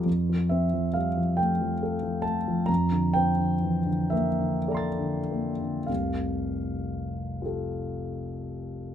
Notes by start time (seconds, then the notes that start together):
0.06 F2
0.30 F3
0.49 C4 E5
0.73 F3
0.94 G3 F5
1.17 F3
1.37 A3 G5
1.61 F3
1.83 A4
2.03 F3
2.22 A3 A5
2.48 F3
2.66 F2 A#5
2.92 D3
3.13 C4 G5
3.39 D3
3.62 E3
3.86 D3
4.10 A#3 E5
4.40 D3
4.68 A4 D5 A#5
4.75 C6 A6
4.99 D3
5.31 A#3
5.62 D3
5.87 F1 C2 F5
7.42 F4 G4 A4